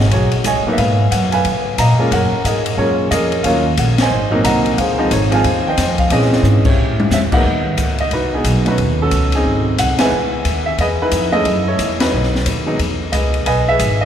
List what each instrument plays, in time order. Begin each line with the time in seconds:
Already playing: upright bass G#1, grand piano F#4 G#4
0.00 snare
0.11 upright bass B1, grand piano F#4 G#4 C#5, kick, ride
0.31 muted upright bass stroke, ride
0.44 upright bass C#2, grand piano C#5 D#5 G#5, kick, hi-hat pedal, ride
0.65 grand piano F#3 A#3 B3 D#4, muted upright bass stroke
0.73 grand piano E5
0.78 upright bass G#2, grand piano B4 F5, kick, ride
1.11 upright bass F#2, grand piano F#5, kick, hi-hat pedal, ride
1.32 grand piano B4 F5 G#5, ride
1.45 upright bass C#3, kick, ride
1.78 upright bass A#2, grand piano D#5 F5 A#5, kick, hi-hat pedal, ride
1.98 grand piano G#3 A#3 C#4 F4, muted upright bass stroke
2.11 upright bass F#2, grand piano A#4 C#5 F#5, kick, ride
2.32 muted upright bass stroke
2.44 upright bass G#2, grand piano G#4 A#4 D#5, kick, hi-hat pedal, ride
2.66 ride
2.77 upright bass F#2, grand piano G#3 A#3 C#4 F4 A#4 C#5, kick
3.11 upright bass F2, grand piano G#4 A#4 D#5, kick, hi-hat pedal, ride
3.32 ride
3.43 upright bass D#2, grand piano F#3 A#3 C#4 F4 A#4 C#5 F5, kick, ride
3.77 upright bass A#1, grand piano F#5, kick, hi-hat pedal, ride
3.98 grand piano G#5, snare, ride
4.03 grand piano C5 D#5
4.10 upright bass G#1
4.31 grand piano F#3 A#3 C4 D#4
4.44 upright bass C2, grand piano D#5 F#5 A#5, kick, hi-hat pedal, ride
4.66 ride
4.78 upright bass C#2, grand piano G#4 C5 F5, kick, ride
4.98 grand piano F3 G#3 C4 D#4
5.11 upright bass G#1, grand piano C#5, kick, hi-hat pedal, ride
5.31 grand piano F3 G#3 C4 F4 G#5, ride
5.36 grand piano C5 F5
5.44 upright bass D#2, kick, ride
5.67 grand piano C5 D#5 G5
5.77 upright bass F2, kick, snare, hi-hat pedal, ride
5.98 grand piano F5, kick, ride
6.10 upright bass A#2, grand piano E3 G#3 C4 C#4 G#4 D#5, ride
6.22 snare
6.33 snare
6.43 upright bass G#2, hi-hat pedal, mid tom
6.65 grand piano E4 G4 C#5, kick, crash
6.77 upright bass A2
7.00 high tom
7.10 upright bass E2, grand piano E5, snare, hi-hat pedal
7.32 grand piano G#2 F#3 A#3 B3 D#4 B4 D#5 F#5, kick, crash
7.44 upright bass D#2
7.77 upright bass C#2, kick, hi-hat pedal, ride
7.98 grand piano D#5, ride
8.11 upright bass C2, grand piano D#4 F#4 B4, kick, ride
8.34 grand piano B3 D#4 G#4
8.44 upright bass B1, kick, hi-hat pedal, ride
8.65 grand piano F#3 A3 C#4 D#4 F#4 B4, ride
8.78 upright bass D#2, kick, ride
9.02 grand piano C#4 F#4 A4
9.11 upright bass C#2, kick, hi-hat pedal, ride
9.32 grand piano G#4, ride
9.36 grand piano C4 D#4
9.45 upright bass G#1, kick
9.78 upright bass C2, grand piano F#5, kick, hi-hat pedal, ride
9.99 grand piano E3 G#3 B3 D#4 B4 E5 G#5, muted upright bass stroke, snare, ride
10.11 upright bass C#2
10.45 upright bass D#2, kick, hi-hat pedal, ride
10.66 grand piano E5
10.78 upright bass E2, grand piano G#4 B4 D#5, kick, ride
11.02 grand piano D#4 E4 B4
11.12 upright bass F2, kick, hi-hat pedal, ride
11.32 grand piano G#3 A3 C#4 E4 A4 D#5
11.45 upright bass F#2, kick, ride
11.68 grand piano E4 A4 C#5
11.79 upright bass E2, kick, hi-hat pedal, ride
12.00 grand piano D#4 F#4 B4, snare, ride
12.12 upright bass B1
12.23 snare
12.35 snare
12.45 upright bass D#2, kick, hi-hat pedal, ride
12.66 grand piano F#3 G#3 B3 D#4
12.79 upright bass E2, kick, ride
13.12 upright bass C#2, grand piano G#4 B4 D#5, kick, hi-hat pedal, ride
13.34 ride
13.46 upright bass B1, grand piano B4 D#5 G#5, kick, ride
13.69 grand piano G#4 B4 E5
13.79 upright bass G#1, kick, hi-hat pedal, ride
14.01 grand piano D#5